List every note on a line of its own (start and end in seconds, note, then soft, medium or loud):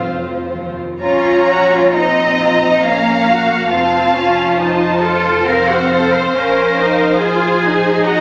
0.00 0.81 F1 medium
0.00 0.77 F3 medium
0.00 0.77 C4 medium
0.00 0.78 F4 medium
0.00 0.78 C5 medium
0.04 0.54 F2 medium
0.53 1.02 D#2 medium
1.01 3.67 A#1 medium
1.01 1.91 C#4 medium
1.01 1.46 F4 medium
1.01 1.91 C#5 medium
1.01 1.91 A#5 medium
1.49 1.72 F#4 medium
1.72 1.95 F4 medium
1.94 2.84 C4 medium
1.94 2.39 D#4 medium
1.94 2.83 D#5 medium
1.94 3.67 A#5 medium
2.39 2.61 F4 medium
2.61 2.83 D#4 medium
2.83 3.72 A#3 medium
2.83 3.27 C#4 medium
2.83 3.70 F5 medium
3.27 3.71 F#4 medium
3.70 6.29 F1 medium
3.70 4.14 C4 medium
3.70 5.01 F4 medium
3.70 4.56 F5 medium
3.70 4.55 A5 medium
4.14 4.57 C#4 medium
4.56 5.01 D#4 medium
4.56 8.04 C5 medium
4.56 5.44 A5 medium
5.01 5.46 F4 medium
5.01 5.46 A4 medium
5.45 6.32 C4 medium
5.45 5.68 A#4 medium
5.45 6.33 F5 medium
5.69 5.90 F#4 medium
5.90 6.12 A4 medium
6.12 6.33 C5 medium
6.33 8.21 A#1 medium
6.33 6.75 C#4 medium
6.33 7.16 A#4 medium
6.33 7.16 F5 medium
6.77 7.18 D#4 medium
7.18 7.62 F4 medium
7.18 8.03 G#4 medium
7.18 8.05 G#5 medium
7.63 8.21 D#4 medium
8.04 8.21 F#4 medium
8.04 8.21 D#5 medium
8.04 8.21 A#5 medium